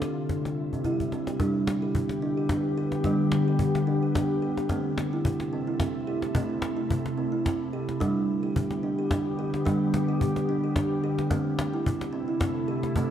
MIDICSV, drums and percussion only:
0, 0, Header, 1, 2, 480
1, 0, Start_track
1, 0, Tempo, 550964
1, 1214, Time_signature, 3, 2, 24, 8
1, 11417, End_track
2, 0, Start_track
2, 0, Title_t, "Cajon"
2, 15, Note_on_c, 9, 38, 54
2, 102, Note_off_c, 9, 38, 0
2, 256, Note_on_c, 9, 36, 47
2, 256, Note_on_c, 9, 38, 15
2, 344, Note_off_c, 9, 36, 0
2, 344, Note_off_c, 9, 38, 0
2, 395, Note_on_c, 9, 38, 38
2, 482, Note_off_c, 9, 38, 0
2, 635, Note_on_c, 9, 36, 29
2, 722, Note_off_c, 9, 36, 0
2, 735, Note_on_c, 9, 36, 31
2, 822, Note_off_c, 9, 36, 0
2, 872, Note_on_c, 9, 36, 36
2, 959, Note_off_c, 9, 36, 0
2, 978, Note_on_c, 9, 38, 39
2, 1065, Note_off_c, 9, 38, 0
2, 1107, Note_on_c, 9, 38, 44
2, 1195, Note_off_c, 9, 38, 0
2, 1217, Note_on_c, 9, 36, 60
2, 1217, Note_on_c, 9, 38, 20
2, 1304, Note_off_c, 9, 36, 0
2, 1304, Note_off_c, 9, 38, 0
2, 1458, Note_on_c, 9, 38, 62
2, 1546, Note_off_c, 9, 38, 0
2, 1591, Note_on_c, 9, 38, 19
2, 1678, Note_off_c, 9, 38, 0
2, 1697, Note_on_c, 9, 36, 53
2, 1784, Note_off_c, 9, 36, 0
2, 1824, Note_on_c, 9, 38, 47
2, 1911, Note_off_c, 9, 38, 0
2, 2172, Note_on_c, 9, 36, 54
2, 2172, Note_on_c, 9, 38, 51
2, 2259, Note_off_c, 9, 36, 0
2, 2259, Note_off_c, 9, 38, 0
2, 2301, Note_on_c, 9, 38, 18
2, 2388, Note_off_c, 9, 38, 0
2, 2542, Note_on_c, 9, 38, 44
2, 2629, Note_off_c, 9, 38, 0
2, 2648, Note_on_c, 9, 36, 57
2, 2648, Note_on_c, 9, 38, 18
2, 2736, Note_off_c, 9, 36, 0
2, 2736, Note_off_c, 9, 38, 0
2, 2889, Note_on_c, 9, 38, 58
2, 2976, Note_off_c, 9, 38, 0
2, 3023, Note_on_c, 9, 38, 18
2, 3110, Note_off_c, 9, 38, 0
2, 3129, Note_on_c, 9, 36, 57
2, 3216, Note_off_c, 9, 36, 0
2, 3268, Note_on_c, 9, 38, 49
2, 3355, Note_off_c, 9, 38, 0
2, 3619, Note_on_c, 9, 36, 60
2, 3619, Note_on_c, 9, 38, 58
2, 3706, Note_off_c, 9, 36, 0
2, 3706, Note_off_c, 9, 38, 0
2, 3745, Note_on_c, 9, 38, 17
2, 3832, Note_off_c, 9, 38, 0
2, 3985, Note_on_c, 9, 38, 43
2, 4073, Note_off_c, 9, 38, 0
2, 4089, Note_on_c, 9, 36, 61
2, 4089, Note_on_c, 9, 38, 20
2, 4176, Note_off_c, 9, 36, 0
2, 4176, Note_off_c, 9, 38, 0
2, 4335, Note_on_c, 9, 38, 59
2, 4422, Note_off_c, 9, 38, 0
2, 4464, Note_on_c, 9, 38, 19
2, 4551, Note_off_c, 9, 38, 0
2, 4573, Note_on_c, 9, 36, 57
2, 4660, Note_off_c, 9, 36, 0
2, 4703, Note_on_c, 9, 38, 47
2, 4791, Note_off_c, 9, 38, 0
2, 5050, Note_on_c, 9, 36, 59
2, 5050, Note_on_c, 9, 38, 54
2, 5137, Note_off_c, 9, 36, 0
2, 5137, Note_off_c, 9, 38, 0
2, 5180, Note_on_c, 9, 38, 18
2, 5268, Note_off_c, 9, 38, 0
2, 5422, Note_on_c, 9, 38, 46
2, 5509, Note_off_c, 9, 38, 0
2, 5530, Note_on_c, 9, 36, 64
2, 5617, Note_off_c, 9, 36, 0
2, 5661, Note_on_c, 9, 38, 19
2, 5748, Note_off_c, 9, 38, 0
2, 5767, Note_on_c, 9, 38, 59
2, 5854, Note_off_c, 9, 38, 0
2, 6016, Note_on_c, 9, 36, 59
2, 6103, Note_off_c, 9, 36, 0
2, 6148, Note_on_c, 9, 38, 43
2, 6235, Note_off_c, 9, 38, 0
2, 6259, Note_on_c, 9, 38, 18
2, 6347, Note_off_c, 9, 38, 0
2, 6393, Note_on_c, 9, 38, 17
2, 6480, Note_off_c, 9, 38, 0
2, 6499, Note_on_c, 9, 36, 55
2, 6499, Note_on_c, 9, 38, 55
2, 6586, Note_off_c, 9, 36, 0
2, 6586, Note_off_c, 9, 38, 0
2, 6871, Note_on_c, 9, 38, 40
2, 6958, Note_off_c, 9, 38, 0
2, 6980, Note_on_c, 9, 36, 54
2, 6980, Note_on_c, 9, 38, 18
2, 7068, Note_off_c, 9, 36, 0
2, 7068, Note_off_c, 9, 38, 0
2, 7347, Note_on_c, 9, 38, 19
2, 7434, Note_off_c, 9, 38, 0
2, 7458, Note_on_c, 9, 36, 55
2, 7545, Note_off_c, 9, 36, 0
2, 7585, Note_on_c, 9, 38, 43
2, 7672, Note_off_c, 9, 38, 0
2, 7934, Note_on_c, 9, 36, 57
2, 7934, Note_on_c, 9, 38, 57
2, 8022, Note_off_c, 9, 36, 0
2, 8022, Note_off_c, 9, 38, 0
2, 8308, Note_on_c, 9, 38, 43
2, 8395, Note_off_c, 9, 38, 0
2, 8420, Note_on_c, 9, 36, 59
2, 8420, Note_on_c, 9, 38, 18
2, 8507, Note_off_c, 9, 36, 0
2, 8507, Note_off_c, 9, 38, 0
2, 8658, Note_on_c, 9, 38, 58
2, 8745, Note_off_c, 9, 38, 0
2, 8788, Note_on_c, 9, 38, 20
2, 8875, Note_off_c, 9, 38, 0
2, 8896, Note_on_c, 9, 36, 58
2, 8983, Note_off_c, 9, 36, 0
2, 9028, Note_on_c, 9, 38, 50
2, 9115, Note_off_c, 9, 38, 0
2, 9372, Note_on_c, 9, 36, 56
2, 9372, Note_on_c, 9, 38, 58
2, 9459, Note_off_c, 9, 36, 0
2, 9459, Note_off_c, 9, 38, 0
2, 9504, Note_on_c, 9, 38, 18
2, 9592, Note_off_c, 9, 38, 0
2, 9744, Note_on_c, 9, 38, 47
2, 9831, Note_off_c, 9, 38, 0
2, 9850, Note_on_c, 9, 36, 65
2, 9850, Note_on_c, 9, 38, 20
2, 9937, Note_off_c, 9, 36, 0
2, 9937, Note_off_c, 9, 38, 0
2, 10094, Note_on_c, 9, 38, 66
2, 10181, Note_off_c, 9, 38, 0
2, 10223, Note_on_c, 9, 38, 19
2, 10310, Note_off_c, 9, 38, 0
2, 10336, Note_on_c, 9, 36, 59
2, 10423, Note_off_c, 9, 36, 0
2, 10465, Note_on_c, 9, 38, 49
2, 10552, Note_off_c, 9, 38, 0
2, 10809, Note_on_c, 9, 36, 56
2, 10809, Note_on_c, 9, 38, 58
2, 10896, Note_off_c, 9, 36, 0
2, 10896, Note_off_c, 9, 38, 0
2, 10941, Note_on_c, 9, 38, 17
2, 11029, Note_off_c, 9, 38, 0
2, 11180, Note_on_c, 9, 38, 45
2, 11267, Note_off_c, 9, 38, 0
2, 11288, Note_on_c, 9, 36, 60
2, 11375, Note_off_c, 9, 36, 0
2, 11417, End_track
0, 0, End_of_file